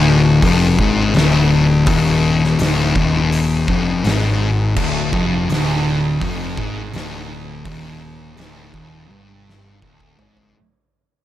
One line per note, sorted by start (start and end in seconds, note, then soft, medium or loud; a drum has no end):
0.00 0.39 D1 loud
0.00 0.42 D2 loud
0.42 0.76 F1 loud
0.42 0.78 F2 loud
0.42 kick loud
0.42 open hi-hat medium
0.78 1.12 G#1 medium
0.78 1.15 G#2 loud
0.78 kick loud
1.14 1.84 D1 loud
1.14 1.87 D2 loud
1.14 snare loud
1.14 open hi-hat medium
1.86 2.56 D#1 loud
1.86 2.59 D#2 loud
1.86 kick loud
1.86 open hi-hat medium
2.44 snare soft
2.59 2.93 D1 loud
2.59 2.95 D2 loud
2.59 snare loud
2.59 open hi-hat medium
2.96 3.64 D#1 loud
2.96 3.68 D#2 loud
2.96 kick loud
3.32 open hi-hat medium
3.68 4.02 F1 medium
3.68 4.03 F2 loud
3.68 kick loud
4.04 4.73 G#1 loud
4.04 4.76 G#2 loud
4.04 snare loud
4.04 open hi-hat medium
4.76 5.10 D1 loud
4.76 5.12 D2 loud
4.76 kick loud
4.76 crash loud
5.12 5.47 F1 loud
5.12 5.48 F2 loud
5.12 kick loud
5.49 6.17 D1 medium
5.49 6.21 D2 loud
5.49 snare loud
5.49 open hi-hat medium
6.21 6.55 F1 loud
6.21 6.57 F2 loud
6.21 kick loud
6.21 open hi-hat medium
6.57 6.91 G#1 medium
6.57 6.94 G#2 loud
6.57 kick loud
6.93 7.62 D1 loud
6.93 7.65 D2 loud
6.93 snare loud
6.93 open hi-hat medium
7.65 8.34 D#1 loud
7.65 8.37 D#2 loud
7.65 kick loud
7.65 open hi-hat medium
8.37 8.71 D1 loud
8.37 8.73 D2 loud
8.37 snare loud
8.37 open hi-hat medium
8.74 9.08 D#1 loud
8.74 9.10 D#2 loud
8.74 kick loud
9.10 9.79 G1 loud
9.10 9.81 G2 loud
9.10 high tom medium
9.49 snare medium
9.81 10.16 D1 loud
9.81 10.17 D2 loud
9.81 kick loud
10.00 kick medium
10.18 10.52 G#1 loud
10.18 10.54 G#2 loud
10.18 floor tom loud
10.37 floor tom loud